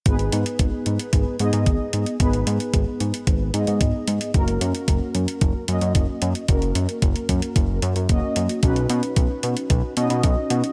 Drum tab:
HH |xxxxx-xxx-xxx-xx|xxxxx-xxx-xxx-xx|xxxxx-xxx-xxx-xx|xxxxxxxxx-xxx-xx|
BD |o---o---o---o---|o---o---o---o---|o---o---o---o---|o---o-o-o---o---|

HH |xxxxx-xxx-xxx-xx|
BD |o---o---o---o---|